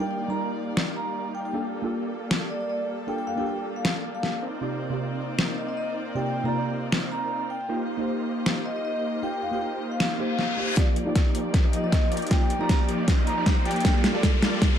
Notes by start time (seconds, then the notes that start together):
Already playing: D#3 G3 A#3 D#4 F4 G4 D5 F5
0.00 G3 D4 D#4 F4 A#4 G5
0.11 G5
0.28 G3 D#4 F4 A#4 D5 A#5
0.77 finger snap, snare
0.96 A#5
1.35 G5
1.45 G5
1.53 A#3 D4 F4 G4 A4 D5 F5
1.82 A#3 D4 F4 G4
1.86 A4
2.31 finger snap, snare
2.50 D5
2.61 D5
2.69 D5
3.07 A#3 D4 F4 G4 A4 G5
3.18 G5
3.27 F5
3.36 A#3 D4 F4 G4 G5
3.40 A4
3.46 G5
3.76 F5
3.85 finger snap, snare
4.15 F5
4.23 snare
4.42 A#3 C4 D#4 F4 A#4 C5 D5 F5
4.61 C3 A#3 D#4 F4 G4 D5
4.89 C3 A#3 D#4 F4 G4
4.93 D5
5.39 finger snap, snare
5.58 D#5
5.69 D#5
5.77 D#5
6.15 C3 A#3 D#4 F4 G4 D5 G5
6.26 G5
6.43 C3 A#3 D#4 F4 G4 A#5
6.47 D5
6.92 finger snap, snare
7.12 A#5
7.50 G5
7.61 G5
7.68 A#3 D#4 F4 G4 C5 D#5 F5
7.97 A#3 D#4 F4 G4 C5
8.46 finger snap, snare
8.66 D#5
8.76 D#5
8.85 D#5
9.22 A#3 D#4 F4 G4 C5 G5
9.34 G5
9.42 F5
9.51 A#3 D#4 F4 G4 G5
9.55 C5
9.62 G5
9.92 F5
10.00 finger snap, snare, reverse cymbal
10.18 A#3 D#4 F4 G4 C5
10.30 F5
10.39 snare
10.57 A#3 D#4 F4 G4 C5
10.76 F3 A#3 D#4 F4 G4 D5, kick, snare, closed hi-hat, riser
10.96 closed hi-hat
11.05 F3 A#3 D#4 F4 G4 D5
11.15 F3 A#3 D#4 G4 D5, kick, snare, closed hi-hat
11.35 F3 A#3 D#4 G4 D5, closed hi-hat
11.54 F3 A#3 D#4 G4 C5, kick, snare, closed hi-hat
11.65 F3 A#3 D#4 G4 D#5
11.73 D#5, closed hi-hat
11.84 F3 A#3 D#4 G4 D5 D#5
11.92 F3 A#3 D#4 G4 C5 D#5, kick, snare, closed hi-hat
12.12 F3 A#3 D#4 G4 D5, closed hi-hat
12.17 closed hi-hat
12.22 closed hi-hat
12.27 A#3 D#4, closed hi-hat
12.31 F3 A#3 D#4 F4 G4 D5 G5, kick, snare, closed hi-hat
12.42 G5
12.50 closed hi-hat
12.59 F3 A#3 D#4 F4 G4 D5 A#5
12.63 D5
12.69 F3 A#3 D#4 G4 D5, kick, snare, closed hi-hat
12.89 F3 A#3 D#4 G4 D5, closed hi-hat
13.08 F3 A#3 D#4 G4 C5, kick, snare, closed hi-hat
13.18 F3 A#3 D#4 G4 D#5
13.27 A#5, closed hi-hat
13.38 F3 A#3 D#4 G4 D5
13.46 F3 A#3 D#4 G4 C5, kick, snare, closed hi-hat
13.65 F3 A#3 D#4 G4 D5 G5, closed hi-hat
13.71 closed hi-hat
13.76 G5, closed hi-hat
13.80 A#3 F4, closed hi-hat
13.85 G3 A#3 F4 G4 A4 D5, kick, snare, closed hi-hat
14.04 snare, closed hi-hat
14.13 G3 A#3 F4 G4 A4 D5
14.23 G3 A#3 F4 A4 D5, kick, snare, closed hi-hat
14.42 G3 A#3 F4 A4 D5, snare, closed hi-hat
14.62 G3 A#3 F4 A4 C5, kick, snare, closed hi-hat
14.72 G3 A#3 F4 A4 F5